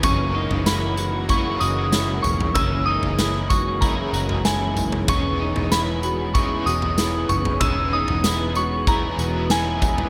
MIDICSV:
0, 0, Header, 1, 7, 480
1, 0, Start_track
1, 0, Tempo, 631579
1, 24, Time_signature, 4, 2, 24, 8
1, 7669, End_track
2, 0, Start_track
2, 0, Title_t, "Synth bell"
2, 0, Program_c, 0, 98
2, 31, Note_on_c, 0, 85, 108
2, 504, Note_on_c, 0, 83, 89
2, 522, Note_off_c, 0, 85, 0
2, 987, Note_on_c, 0, 85, 95
2, 999, Note_off_c, 0, 83, 0
2, 1217, Note_on_c, 0, 87, 95
2, 1233, Note_off_c, 0, 85, 0
2, 1670, Note_off_c, 0, 87, 0
2, 1691, Note_on_c, 0, 85, 87
2, 1934, Note_on_c, 0, 88, 108
2, 1945, Note_off_c, 0, 85, 0
2, 2162, Note_off_c, 0, 88, 0
2, 2171, Note_on_c, 0, 87, 95
2, 2627, Note_off_c, 0, 87, 0
2, 2657, Note_on_c, 0, 85, 93
2, 2894, Note_on_c, 0, 82, 83
2, 2908, Note_off_c, 0, 85, 0
2, 3383, Note_on_c, 0, 80, 83
2, 3394, Note_off_c, 0, 82, 0
2, 3718, Note_off_c, 0, 80, 0
2, 3868, Note_on_c, 0, 85, 105
2, 4344, Note_on_c, 0, 83, 86
2, 4360, Note_off_c, 0, 85, 0
2, 4819, Note_on_c, 0, 85, 92
2, 4839, Note_off_c, 0, 83, 0
2, 5062, Note_on_c, 0, 87, 100
2, 5069, Note_off_c, 0, 85, 0
2, 5541, Note_on_c, 0, 85, 88
2, 5557, Note_off_c, 0, 87, 0
2, 5778, Note_on_c, 0, 88, 110
2, 5790, Note_off_c, 0, 85, 0
2, 6028, Note_on_c, 0, 87, 92
2, 6029, Note_off_c, 0, 88, 0
2, 6509, Note_on_c, 0, 85, 91
2, 6520, Note_off_c, 0, 87, 0
2, 6749, Note_on_c, 0, 82, 91
2, 6754, Note_off_c, 0, 85, 0
2, 7227, Note_on_c, 0, 80, 81
2, 7241, Note_off_c, 0, 82, 0
2, 7560, Note_off_c, 0, 80, 0
2, 7669, End_track
3, 0, Start_track
3, 0, Title_t, "Clean electric guitar"
3, 0, Program_c, 1, 27
3, 27, Note_on_c, 1, 61, 85
3, 260, Note_off_c, 1, 61, 0
3, 263, Note_on_c, 1, 63, 76
3, 503, Note_off_c, 1, 63, 0
3, 503, Note_on_c, 1, 64, 84
3, 740, Note_off_c, 1, 64, 0
3, 743, Note_on_c, 1, 66, 71
3, 978, Note_off_c, 1, 66, 0
3, 981, Note_on_c, 1, 64, 83
3, 1219, Note_off_c, 1, 64, 0
3, 1223, Note_on_c, 1, 66, 73
3, 1460, Note_off_c, 1, 66, 0
3, 1463, Note_on_c, 1, 64, 78
3, 1944, Note_off_c, 1, 64, 0
3, 1944, Note_on_c, 1, 61, 81
3, 2180, Note_off_c, 1, 61, 0
3, 2183, Note_on_c, 1, 63, 74
3, 2423, Note_off_c, 1, 63, 0
3, 2423, Note_on_c, 1, 64, 80
3, 2661, Note_off_c, 1, 64, 0
3, 2664, Note_on_c, 1, 66, 81
3, 2900, Note_off_c, 1, 66, 0
3, 2903, Note_on_c, 1, 64, 80
3, 3140, Note_off_c, 1, 64, 0
3, 3143, Note_on_c, 1, 66, 76
3, 3381, Note_off_c, 1, 66, 0
3, 3384, Note_on_c, 1, 64, 76
3, 3864, Note_off_c, 1, 64, 0
3, 3864, Note_on_c, 1, 61, 80
3, 4100, Note_off_c, 1, 61, 0
3, 4103, Note_on_c, 1, 63, 74
3, 4343, Note_off_c, 1, 63, 0
3, 4344, Note_on_c, 1, 64, 83
3, 4582, Note_off_c, 1, 64, 0
3, 4585, Note_on_c, 1, 66, 73
3, 4823, Note_off_c, 1, 66, 0
3, 4826, Note_on_c, 1, 64, 82
3, 5065, Note_off_c, 1, 64, 0
3, 5069, Note_on_c, 1, 66, 74
3, 5305, Note_off_c, 1, 66, 0
3, 5308, Note_on_c, 1, 64, 79
3, 5786, Note_off_c, 1, 64, 0
3, 5788, Note_on_c, 1, 61, 85
3, 6024, Note_off_c, 1, 61, 0
3, 6027, Note_on_c, 1, 63, 71
3, 6266, Note_off_c, 1, 63, 0
3, 6269, Note_on_c, 1, 64, 84
3, 6503, Note_off_c, 1, 64, 0
3, 6506, Note_on_c, 1, 66, 81
3, 6741, Note_off_c, 1, 66, 0
3, 6744, Note_on_c, 1, 64, 88
3, 6984, Note_off_c, 1, 64, 0
3, 6987, Note_on_c, 1, 66, 71
3, 7224, Note_off_c, 1, 66, 0
3, 7227, Note_on_c, 1, 64, 80
3, 7669, Note_off_c, 1, 64, 0
3, 7669, End_track
4, 0, Start_track
4, 0, Title_t, "Overdriven electric guitar"
4, 0, Program_c, 2, 29
4, 23, Note_on_c, 2, 42, 82
4, 27, Note_on_c, 2, 49, 84
4, 33, Note_on_c, 2, 52, 74
4, 36, Note_on_c, 2, 58, 86
4, 38, Note_on_c, 2, 63, 81
4, 44, Note_on_c, 2, 68, 81
4, 250, Note_off_c, 2, 68, 0
4, 259, Note_on_c, 2, 68, 51
4, 261, Note_off_c, 2, 63, 0
4, 264, Note_off_c, 2, 42, 0
4, 266, Note_off_c, 2, 49, 0
4, 268, Note_off_c, 2, 52, 0
4, 270, Note_off_c, 2, 58, 0
4, 270, Note_on_c, 2, 63, 46
4, 278, Note_on_c, 2, 58, 51
4, 286, Note_on_c, 2, 52, 43
4, 971, Note_on_c, 2, 42, 84
4, 982, Note_on_c, 2, 49, 81
4, 989, Note_off_c, 2, 52, 0
4, 989, Note_off_c, 2, 58, 0
4, 992, Note_on_c, 2, 52, 75
4, 994, Note_off_c, 2, 68, 0
4, 998, Note_on_c, 2, 58, 76
4, 1002, Note_off_c, 2, 63, 0
4, 1005, Note_on_c, 2, 63, 98
4, 1015, Note_on_c, 2, 68, 92
4, 1927, Note_off_c, 2, 42, 0
4, 1932, Note_off_c, 2, 49, 0
4, 1936, Note_on_c, 2, 42, 77
4, 1938, Note_off_c, 2, 58, 0
4, 1940, Note_off_c, 2, 52, 0
4, 1941, Note_on_c, 2, 49, 78
4, 1943, Note_on_c, 2, 52, 81
4, 1947, Note_on_c, 2, 58, 86
4, 1948, Note_off_c, 2, 63, 0
4, 1951, Note_off_c, 2, 68, 0
4, 1951, Note_on_c, 2, 63, 75
4, 1954, Note_on_c, 2, 68, 86
4, 2165, Note_off_c, 2, 68, 0
4, 2174, Note_on_c, 2, 68, 48
4, 2176, Note_off_c, 2, 63, 0
4, 2180, Note_off_c, 2, 42, 0
4, 2183, Note_off_c, 2, 49, 0
4, 2183, Note_off_c, 2, 52, 0
4, 2185, Note_off_c, 2, 58, 0
4, 2185, Note_on_c, 2, 63, 50
4, 2194, Note_on_c, 2, 58, 44
4, 2200, Note_on_c, 2, 52, 40
4, 2889, Note_on_c, 2, 42, 85
4, 2898, Note_on_c, 2, 49, 85
4, 2905, Note_off_c, 2, 52, 0
4, 2907, Note_off_c, 2, 58, 0
4, 2908, Note_on_c, 2, 52, 84
4, 2911, Note_off_c, 2, 68, 0
4, 2916, Note_on_c, 2, 58, 77
4, 2921, Note_off_c, 2, 63, 0
4, 2924, Note_on_c, 2, 63, 84
4, 2930, Note_on_c, 2, 68, 91
4, 3849, Note_off_c, 2, 52, 0
4, 3853, Note_on_c, 2, 52, 70
4, 3856, Note_off_c, 2, 42, 0
4, 3861, Note_off_c, 2, 49, 0
4, 3868, Note_off_c, 2, 58, 0
4, 3871, Note_on_c, 2, 59, 77
4, 3875, Note_off_c, 2, 63, 0
4, 3882, Note_on_c, 2, 63, 73
4, 3892, Note_off_c, 2, 68, 0
4, 3895, Note_on_c, 2, 68, 92
4, 4808, Note_off_c, 2, 52, 0
4, 4811, Note_on_c, 2, 52, 74
4, 4825, Note_off_c, 2, 59, 0
4, 4828, Note_on_c, 2, 59, 83
4, 4833, Note_off_c, 2, 63, 0
4, 4840, Note_off_c, 2, 68, 0
4, 4844, Note_on_c, 2, 63, 80
4, 4854, Note_on_c, 2, 68, 84
4, 5777, Note_off_c, 2, 52, 0
4, 5780, Note_on_c, 2, 52, 84
4, 5785, Note_off_c, 2, 59, 0
4, 5786, Note_off_c, 2, 63, 0
4, 5788, Note_on_c, 2, 59, 80
4, 5792, Note_off_c, 2, 68, 0
4, 5795, Note_on_c, 2, 63, 85
4, 5801, Note_on_c, 2, 68, 83
4, 6010, Note_off_c, 2, 68, 0
4, 6020, Note_on_c, 2, 68, 47
4, 6022, Note_off_c, 2, 52, 0
4, 6026, Note_off_c, 2, 59, 0
4, 6026, Note_off_c, 2, 63, 0
4, 6035, Note_on_c, 2, 63, 47
4, 6047, Note_on_c, 2, 59, 38
4, 6741, Note_on_c, 2, 52, 75
4, 6742, Note_off_c, 2, 68, 0
4, 6744, Note_off_c, 2, 59, 0
4, 6746, Note_off_c, 2, 63, 0
4, 6748, Note_on_c, 2, 59, 90
4, 6755, Note_on_c, 2, 63, 89
4, 6761, Note_on_c, 2, 68, 84
4, 7212, Note_off_c, 2, 52, 0
4, 7215, Note_on_c, 2, 52, 58
4, 7223, Note_off_c, 2, 59, 0
4, 7226, Note_off_c, 2, 63, 0
4, 7226, Note_on_c, 2, 59, 62
4, 7232, Note_off_c, 2, 68, 0
4, 7236, Note_on_c, 2, 63, 63
4, 7242, Note_on_c, 2, 68, 70
4, 7669, Note_off_c, 2, 52, 0
4, 7669, Note_off_c, 2, 59, 0
4, 7669, Note_off_c, 2, 63, 0
4, 7669, Note_off_c, 2, 68, 0
4, 7669, End_track
5, 0, Start_track
5, 0, Title_t, "Analog synth pad"
5, 0, Program_c, 3, 89
5, 0, Note_on_c, 3, 52, 72
5, 0, Note_on_c, 3, 56, 75
5, 26, Note_on_c, 3, 58, 74
5, 27, Note_on_c, 3, 61, 74
5, 27, Note_on_c, 3, 66, 89
5, 1927, Note_off_c, 3, 66, 0
5, 1941, Note_on_c, 3, 68, 88
5, 3830, Note_off_c, 3, 52, 0
5, 3835, Note_off_c, 3, 58, 0
5, 3852, Note_on_c, 3, 52, 81
5, 3854, Note_on_c, 3, 59, 74
5, 7669, Note_off_c, 3, 52, 0
5, 7669, Note_off_c, 3, 56, 0
5, 7669, Note_off_c, 3, 59, 0
5, 7669, Note_off_c, 3, 61, 0
5, 7669, Note_off_c, 3, 68, 0
5, 7669, End_track
6, 0, Start_track
6, 0, Title_t, "Fingered electric bass"
6, 0, Program_c, 4, 33
6, 24, Note_on_c, 4, 30, 113
6, 366, Note_off_c, 4, 30, 0
6, 385, Note_on_c, 4, 30, 101
6, 1194, Note_off_c, 4, 30, 0
6, 1227, Note_on_c, 4, 30, 105
6, 1682, Note_off_c, 4, 30, 0
6, 1708, Note_on_c, 4, 28, 80
6, 1934, Note_off_c, 4, 28, 0
6, 1941, Note_on_c, 4, 30, 104
6, 2284, Note_off_c, 4, 30, 0
6, 2295, Note_on_c, 4, 30, 95
6, 3109, Note_off_c, 4, 30, 0
6, 3137, Note_on_c, 4, 30, 104
6, 3830, Note_off_c, 4, 30, 0
6, 3864, Note_on_c, 4, 28, 106
6, 4206, Note_off_c, 4, 28, 0
6, 4220, Note_on_c, 4, 28, 99
6, 5032, Note_off_c, 4, 28, 0
6, 5064, Note_on_c, 4, 28, 97
6, 5520, Note_off_c, 4, 28, 0
6, 5543, Note_on_c, 4, 30, 81
6, 5771, Note_off_c, 4, 30, 0
6, 5783, Note_on_c, 4, 28, 113
6, 6125, Note_off_c, 4, 28, 0
6, 6139, Note_on_c, 4, 28, 98
6, 6951, Note_off_c, 4, 28, 0
6, 6980, Note_on_c, 4, 28, 106
6, 7669, Note_off_c, 4, 28, 0
6, 7669, End_track
7, 0, Start_track
7, 0, Title_t, "Drums"
7, 24, Note_on_c, 9, 43, 122
7, 24, Note_on_c, 9, 54, 70
7, 26, Note_on_c, 9, 36, 109
7, 100, Note_off_c, 9, 43, 0
7, 100, Note_off_c, 9, 54, 0
7, 102, Note_off_c, 9, 36, 0
7, 385, Note_on_c, 9, 43, 64
7, 461, Note_off_c, 9, 43, 0
7, 504, Note_on_c, 9, 38, 118
7, 504, Note_on_c, 9, 54, 95
7, 580, Note_off_c, 9, 38, 0
7, 580, Note_off_c, 9, 54, 0
7, 740, Note_on_c, 9, 54, 67
7, 816, Note_off_c, 9, 54, 0
7, 981, Note_on_c, 9, 43, 59
7, 981, Note_on_c, 9, 54, 59
7, 984, Note_on_c, 9, 36, 91
7, 1057, Note_off_c, 9, 43, 0
7, 1057, Note_off_c, 9, 54, 0
7, 1060, Note_off_c, 9, 36, 0
7, 1221, Note_on_c, 9, 54, 64
7, 1297, Note_off_c, 9, 54, 0
7, 1463, Note_on_c, 9, 38, 102
7, 1464, Note_on_c, 9, 54, 91
7, 1539, Note_off_c, 9, 38, 0
7, 1540, Note_off_c, 9, 54, 0
7, 1704, Note_on_c, 9, 43, 63
7, 1704, Note_on_c, 9, 54, 60
7, 1780, Note_off_c, 9, 43, 0
7, 1780, Note_off_c, 9, 54, 0
7, 1828, Note_on_c, 9, 43, 71
7, 1904, Note_off_c, 9, 43, 0
7, 1941, Note_on_c, 9, 43, 111
7, 1941, Note_on_c, 9, 54, 65
7, 1943, Note_on_c, 9, 36, 105
7, 2017, Note_off_c, 9, 43, 0
7, 2017, Note_off_c, 9, 54, 0
7, 2019, Note_off_c, 9, 36, 0
7, 2302, Note_on_c, 9, 43, 59
7, 2378, Note_off_c, 9, 43, 0
7, 2421, Note_on_c, 9, 38, 121
7, 2421, Note_on_c, 9, 54, 92
7, 2497, Note_off_c, 9, 38, 0
7, 2497, Note_off_c, 9, 54, 0
7, 2661, Note_on_c, 9, 54, 69
7, 2663, Note_on_c, 9, 36, 86
7, 2737, Note_off_c, 9, 54, 0
7, 2739, Note_off_c, 9, 36, 0
7, 2902, Note_on_c, 9, 43, 56
7, 2902, Note_on_c, 9, 54, 63
7, 2903, Note_on_c, 9, 36, 89
7, 2978, Note_off_c, 9, 43, 0
7, 2978, Note_off_c, 9, 54, 0
7, 2979, Note_off_c, 9, 36, 0
7, 3144, Note_on_c, 9, 54, 65
7, 3220, Note_off_c, 9, 54, 0
7, 3262, Note_on_c, 9, 43, 55
7, 3338, Note_off_c, 9, 43, 0
7, 3381, Note_on_c, 9, 38, 98
7, 3382, Note_on_c, 9, 54, 83
7, 3457, Note_off_c, 9, 38, 0
7, 3458, Note_off_c, 9, 54, 0
7, 3622, Note_on_c, 9, 43, 63
7, 3622, Note_on_c, 9, 54, 61
7, 3698, Note_off_c, 9, 43, 0
7, 3698, Note_off_c, 9, 54, 0
7, 3742, Note_on_c, 9, 43, 70
7, 3818, Note_off_c, 9, 43, 0
7, 3863, Note_on_c, 9, 43, 123
7, 3863, Note_on_c, 9, 54, 68
7, 3864, Note_on_c, 9, 36, 96
7, 3939, Note_off_c, 9, 43, 0
7, 3939, Note_off_c, 9, 54, 0
7, 3940, Note_off_c, 9, 36, 0
7, 4224, Note_on_c, 9, 43, 68
7, 4300, Note_off_c, 9, 43, 0
7, 4345, Note_on_c, 9, 38, 116
7, 4345, Note_on_c, 9, 54, 100
7, 4421, Note_off_c, 9, 38, 0
7, 4421, Note_off_c, 9, 54, 0
7, 4582, Note_on_c, 9, 54, 68
7, 4658, Note_off_c, 9, 54, 0
7, 4825, Note_on_c, 9, 36, 91
7, 4826, Note_on_c, 9, 43, 63
7, 4826, Note_on_c, 9, 54, 62
7, 4901, Note_off_c, 9, 36, 0
7, 4902, Note_off_c, 9, 43, 0
7, 4902, Note_off_c, 9, 54, 0
7, 5068, Note_on_c, 9, 54, 64
7, 5144, Note_off_c, 9, 54, 0
7, 5184, Note_on_c, 9, 43, 56
7, 5260, Note_off_c, 9, 43, 0
7, 5303, Note_on_c, 9, 38, 96
7, 5303, Note_on_c, 9, 54, 88
7, 5379, Note_off_c, 9, 38, 0
7, 5379, Note_off_c, 9, 54, 0
7, 5543, Note_on_c, 9, 43, 63
7, 5543, Note_on_c, 9, 54, 63
7, 5619, Note_off_c, 9, 43, 0
7, 5619, Note_off_c, 9, 54, 0
7, 5665, Note_on_c, 9, 43, 74
7, 5741, Note_off_c, 9, 43, 0
7, 5782, Note_on_c, 9, 43, 113
7, 5782, Note_on_c, 9, 54, 67
7, 5784, Note_on_c, 9, 36, 100
7, 5858, Note_off_c, 9, 43, 0
7, 5858, Note_off_c, 9, 54, 0
7, 5860, Note_off_c, 9, 36, 0
7, 6141, Note_on_c, 9, 43, 61
7, 6217, Note_off_c, 9, 43, 0
7, 6262, Note_on_c, 9, 38, 121
7, 6262, Note_on_c, 9, 54, 98
7, 6338, Note_off_c, 9, 38, 0
7, 6338, Note_off_c, 9, 54, 0
7, 6501, Note_on_c, 9, 54, 70
7, 6577, Note_off_c, 9, 54, 0
7, 6742, Note_on_c, 9, 43, 66
7, 6742, Note_on_c, 9, 54, 57
7, 6743, Note_on_c, 9, 36, 100
7, 6818, Note_off_c, 9, 43, 0
7, 6818, Note_off_c, 9, 54, 0
7, 6819, Note_off_c, 9, 36, 0
7, 6983, Note_on_c, 9, 54, 66
7, 7059, Note_off_c, 9, 54, 0
7, 7220, Note_on_c, 9, 38, 106
7, 7221, Note_on_c, 9, 54, 82
7, 7296, Note_off_c, 9, 38, 0
7, 7297, Note_off_c, 9, 54, 0
7, 7462, Note_on_c, 9, 43, 64
7, 7462, Note_on_c, 9, 54, 61
7, 7464, Note_on_c, 9, 36, 90
7, 7538, Note_off_c, 9, 43, 0
7, 7538, Note_off_c, 9, 54, 0
7, 7540, Note_off_c, 9, 36, 0
7, 7586, Note_on_c, 9, 43, 71
7, 7662, Note_off_c, 9, 43, 0
7, 7669, End_track
0, 0, End_of_file